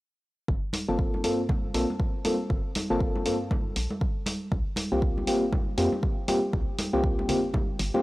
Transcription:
0.48 0.60 G1 medium
0.48 kick loud
0.73 open hi-hat loud
0.73 high conga medium
0.89 1.26 G1 medium
0.89 1.22 A#3 medium
0.89 1.22 C4 medium
0.89 1.22 F4 medium
0.89 1.22 A4 medium
0.99 kick loud
1.14 high conga medium
1.24 1.70 G2 medium
1.24 1.41 A#3 medium
1.24 1.41 C4 medium
1.24 1.41 F4 medium
1.24 1.41 A4 medium
1.24 open hi-hat medium
1.49 kick loud
1.49 high conga medium
1.49 low conga medium
1.74 1.86 A#1 medium
1.74 1.86 A#3 medium
1.74 1.86 C4 medium
1.74 1.86 F4 medium
1.74 1.86 A4 medium
1.74 open hi-hat loud
1.90 high conga medium
2.00 kick loud
2.25 2.36 A#3 medium
2.25 2.36 C4 medium
2.25 2.36 F4 medium
2.25 2.36 A4 medium
2.25 open hi-hat medium
2.25 high conga medium
2.50 2.61 G1 loud
2.50 kick loud
2.75 open hi-hat loud
2.75 high conga medium
2.90 3.27 G1 medium
2.90 3.23 A#3 medium
2.90 3.23 C4 medium
2.90 3.23 F4 medium
2.90 3.23 A4 loud
3.00 kick loud
3.16 high conga medium
3.26 3.72 G2 medium
3.26 3.37 A#3 medium
3.26 3.37 C4 medium
3.26 3.37 F4 medium
3.26 3.37 A4 medium
3.26 open hi-hat medium
3.51 kick loud
3.51 high conga medium
3.51 low conga medium
3.76 3.88 A#1 medium
3.76 open hi-hat loud
3.90 high conga medium
4.01 kick loud
4.26 open hi-hat medium
4.26 high conga medium
4.52 4.63 C2 loud
4.52 kick loud
4.76 open hi-hat loud
4.76 high conga medium
4.92 5.29 C2 medium
4.92 5.25 A#3 medium
4.92 5.25 C4 medium
4.92 5.25 F4 medium
4.92 5.25 G4 medium
5.02 kick loud
5.18 high conga medium
5.27 5.74 G1 medium
5.27 5.44 A#3 medium
5.27 5.44 C4 medium
5.27 5.44 F4 medium
5.27 5.44 G4 medium
5.27 open hi-hat medium
5.52 kick loud
5.52 high conga medium
5.52 low conga medium
5.78 5.89 F2 medium
5.78 5.89 A#3 medium
5.78 5.89 C4 medium
5.78 5.89 F4 medium
5.78 5.89 G4 medium
5.78 open hi-hat loud
5.92 high conga medium
6.03 kick loud
6.28 6.39 A#3 medium
6.28 6.39 C4 medium
6.28 6.39 F4 medium
6.28 6.39 G4 medium
6.28 open hi-hat medium
6.28 high conga medium
6.53 6.65 C2 loud
6.53 kick loud
6.79 open hi-hat loud
6.79 high conga medium
6.93 7.30 C2 medium
6.93 7.26 A#3 medium
6.93 7.27 C4 medium
6.93 7.26 F4 medium
6.93 7.27 G4 loud
7.04 kick loud
7.19 high conga medium
7.29 7.75 G1 medium
7.29 7.40 A#3 medium
7.29 7.40 C4 medium
7.29 7.40 F4 medium
7.29 7.40 G4 medium
7.29 open hi-hat medium
7.29 low conga medium
7.54 kick loud
7.54 high conga medium
7.54 low conga medium
7.79 7.91 G1 medium
7.79 open hi-hat loud
7.94 8.02 A#3 medium
7.94 8.02 C4 medium
7.94 8.02 F4 medium
7.94 8.02 G4 medium
7.94 high conga medium

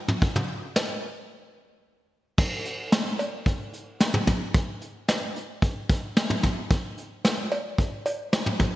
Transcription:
0.08 mid tom medium
0.22 kick loud
0.36 mid tom medium
0.76 snare loud
2.38 kick loud
2.38 crash loud
2.65 closed hi-hat medium
2.92 snare loud
2.92 closed hi-hat medium
3.19 closed hi-hat medium
3.19 cowbell medium
3.46 kick loud
3.46 closed hi-hat medium
3.73 closed hi-hat medium
4.00 snare loud
4.00 closed hi-hat medium
4.14 mid tom medium
4.27 kick medium
4.27 closed hi-hat medium
4.27 mid tom medium
4.54 kick loud
4.54 closed hi-hat medium
4.81 closed hi-hat medium
5.08 snare loud
5.08 closed hi-hat medium
5.36 closed hi-hat medium
5.62 kick medium
5.62 closed hi-hat medium
5.90 kick loud
5.90 closed hi-hat medium
6.16 snare loud
6.16 closed hi-hat medium
6.30 mid tom medium
6.43 kick loud
6.43 closed hi-hat medium
6.43 mid tom medium
6.71 kick loud
6.71 closed hi-hat medium
6.98 closed hi-hat medium
7.25 snare loud
7.25 closed hi-hat medium
7.52 closed hi-hat medium
7.52 cowbell medium
7.78 kick medium
7.78 closed hi-hat medium
8.06 closed hi-hat medium
8.06 cowbell medium
8.33 snare loud
8.33 closed hi-hat medium
8.46 mid tom medium
8.60 kick medium
8.60 closed hi-hat medium
8.60 mid tom medium

